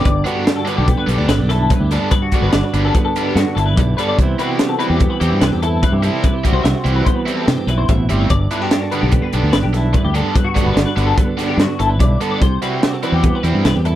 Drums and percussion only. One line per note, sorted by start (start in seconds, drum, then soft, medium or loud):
0.05 kick loud
0.05 closed hi-hat medium
0.26 closed hi-hat medium
0.47 snare loud
0.47 closed hi-hat medium
0.67 closed hi-hat medium
0.88 kick medium
0.88 closed hi-hat medium
1.08 closed hi-hat medium
1.29 snare loud
1.29 closed hi-hat medium
1.50 snare soft
1.50 closed hi-hat medium
1.70 kick loud
1.70 closed hi-hat medium
1.91 snare soft
1.91 closed hi-hat medium
2.11 kick loud
2.11 closed hi-hat medium
2.32 kick medium
2.32 closed hi-hat medium
2.52 snare loud
2.52 closed hi-hat medium
2.74 closed hi-hat medium
2.95 kick medium
2.95 closed hi-hat medium
3.16 closed hi-hat medium
3.37 snare loud
3.37 closed hi-hat medium
3.58 closed hi-hat medium
3.77 kick loud
3.77 closed hi-hat medium
3.98 closed hi-hat medium
4.19 kick loud
4.19 closed hi-hat medium
4.39 closed hi-hat medium
4.59 snare loud
4.59 closed hi-hat medium
4.80 closed hi-hat medium
5.00 kick medium
5.00 closed hi-hat medium
5.21 closed hi-hat medium
5.41 snare loud
5.41 closed hi-hat medium
5.63 closed hi-hat medium
5.83 kick loud
5.83 closed hi-hat medium
6.03 closed hi-hat medium
6.24 kick loud
6.24 closed hi-hat medium
6.45 kick medium
6.45 closed hi-hat medium
6.65 snare loud
6.65 closed hi-hat medium
6.86 closed hi-hat medium
7.07 kick medium
7.07 closed hi-hat medium
7.28 closed hi-hat medium
7.48 snare loud
7.48 closed hi-hat medium
7.68 closed hi-hat medium
7.89 kick medium
7.89 closed hi-hat medium
8.09 closed hi-hat medium
8.30 kick loud
8.30 closed hi-hat medium
8.51 closed hi-hat medium
8.71 snare loud
8.71 closed hi-hat medium
8.92 closed hi-hat soft
9.12 kick medium
9.12 closed hi-hat medium
9.33 closed hi-hat medium
9.53 snare loud
9.53 closed hi-hat medium
9.74 snare soft
9.74 closed hi-hat medium
9.94 kick medium
9.94 closed hi-hat medium
10.15 closed hi-hat soft
10.36 kick loud
10.36 closed hi-hat medium
10.56 kick medium
10.56 closed hi-hat medium
10.77 snare medium
10.77 closed hi-hat medium
10.97 closed hi-hat medium
11.18 kick medium
11.18 closed hi-hat medium
11.39 snare soft
11.39 closed hi-hat medium
11.59 snare medium
11.59 closed hi-hat medium
11.80 closed hi-hat medium
12.00 kick loud
12.00 closed hi-hat medium
12.21 closed hi-hat medium
12.42 kick loud
12.42 closed hi-hat medium
12.62 closed hi-hat medium
12.83 snare loud
12.83 closed hi-hat medium
13.03 closed hi-hat medium
13.23 kick medium
13.23 closed hi-hat medium
13.44 closed hi-hat soft
13.65 snare medium
13.65 closed hi-hat medium
13.85 closed hi-hat soft